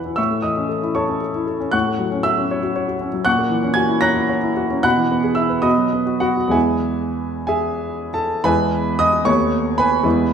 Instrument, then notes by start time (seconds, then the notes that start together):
grand piano
Already playing: E2 B2 E3 E4 B4 E5 F#5 G#5 E6 F#6 G#6
0.06 E4
0.16 A2 E5 C#6 E6
0.30 A3
0.42 E3 D#5 D#6
0.57 C#4
0.69 A4
0.83 E4
0.95 A4 C#5 A5 C#6
1.09 C#4
1.21 A4
1.35 E4
1.47 A4
1.60 C#4
1.72 A2 F#5 C#6 F#6
1.87 A3
1.99 F#3
2.12 C#4
2.23 F#4 E5 E6
2.37 C#4
2.51 C#5
2.63 F#4
2.76 C#5
2.88 F#4
3.01 C#4
3.14 F#3
3.25 A#2 F#5 C#6 F#6
3.39 A#3
3.50 E3
3.62 C#4
3.74 F#4 G#5 G#6
3.89 E4
4.01 C#5 A#5 F#6 A#6
4.15 E4
4.29 C#5
4.43 E4
4.57 F#4
4.71 C#4
4.83 B2 F#5 B5 F#6
4.97 E3
5.12 B3
5.24 G#4
5.35 E4 E5 E6
5.50 B4
5.62 B2 D#5 B5 D#6
5.78 F#3
5.93 B3
6.06 F#4
6.20 B3 F#4 F#5
6.37 F#4
6.47 E2 G#3 B3 G#5
6.52 E4 G#4 E5
7.47 G#4 E5 G#5
8.14 A4 A5
8.44 E2 G#3 B3 E4 B4 G#5 B5
8.99 D#5 D#6
9.25 D#2 A3 B3 C#5 C#6
9.78 B4 G#5 B5
10.03 E2 G#3 B3 E4